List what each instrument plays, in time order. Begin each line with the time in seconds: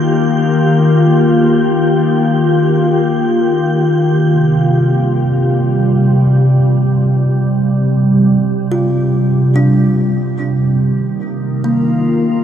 Already playing: ambient pad D#3 A#3 F4 G4, synth texture G6
4.14 ambient pad C3
4.55 ambient pad G3
8.72 kalimba F4
9.56 kalimba D4
10.82 ambient pad D#3
11.05 ambient pad A#3
11.46 ambient pad F4
11.64 kalimba A#3